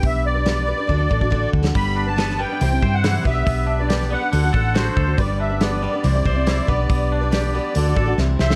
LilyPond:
<<
  \new Staff \with { instrumentName = "Accordion" } { \time 4/4 \key g \major \tempo 4 = 140 e''8 d''2. r8 | b''8. a''8. g''4~ g''16 fis''8. e''8~ | e''8. d''8. fis''4. c''4 | d''8 e''8 d''2.~ |
d''2. r8 e''8 | }
  \new Staff \with { instrumentName = "Twelve-string acoustic guitar" } { \time 4/4 \key g \major <b d' g' b'>8. <d' g' b'>16 <b d' g' b'>8 <b d' g' b'>16 <d' g' b'>16 <d d' fis' a'>16 <d' fis' a'>16 <d d' fis' a'>16 <d' fis' a'>16 <d d' fis' a'>8. <d' fis' a'>16 | <g b d' b'>8. <b d' b'>16 <g b d' b'>8 <g b d' b'>16 <b d' b'>16 <c e g c' e' c''>16 <g c' e' c''>16 <g c' e' c''>8 <c e g c' e' c''>8 <b d' g' b'>8~ | <b d' g' b'>8. <d' g' b'>16 <b d' g' b'>8 <b d' g' b'>16 <d' g' b'>16 <d d' fis' a'>16 <d' fis' a'>16 <d d' fis' a'>8 <d d' fis' a'>8. <d' fis' a'>16 | <g b d' b'>8. <b d' b'>16 <g b d' b'>8 <g b d' b'>16 <b d' b'>16 <c e g c' e' c''>16 <g c' e' c''>16 <g c' e' c''>16 <g c' e' c''>16 <c e g c' e' c''>8 <b d' g' b'>8~ |
<b d' g' b'>8. <d' g' b'>16 <b d' g' b'>8 <b d' g' b'>8 <d d' fis' a'>16 <d' fis' a'>16 <d d' fis' a'>16 <d' fis' a'>16 <c e g c' e' c''>8. <g c' e' c''>16 | }
  \new Staff \with { instrumentName = "Clean electric guitar" } { \time 4/4 \key g \major r1 | g8 d'8 b8 g8 c8 c''8 e'8 b8 | b8 d'8 g'8 b8 d8 a'8 fis'8 a'8 | g8 d'8 b8 g8 c8 c''8 e'8 b8 |
b8 d'8 g'8 b8 d8 a'8 c8 c''8 | }
  \new Staff \with { instrumentName = "Fingered electric bass" } { \clef bass \time 4/4 \key g \major b,,2 d,8 a,,4 d,8 | g,,2 c,8 g,4 b,,8 | b,,2 d,8 a,,4 d,8 | g,,2 c,8 c,4 b,,8 |
b,,2 d,8 a,,8 c,8 c,8 | }
  \new DrumStaff \with { instrumentName = "Drums" } \drummode { \time 4/4 <hho bd>4 <hho sn>4 bd8 bd16 bd16 bd8 bd16 sn16 | <hho bd>4 <hho sn>16 sn8. hho8 bd8 <hho sn>8 bd8 | <hho bd>4 <hho sn>16 sn8. hho8 bd8 <hho sn>8 bd8 | <hho bd>4 <hho sn>4 hho8 bd8 <hho sn>8 bd8 |
<hho bd>4 <hho sn>4 hho8 bd8 sn8 sn16 sn16 | }
>>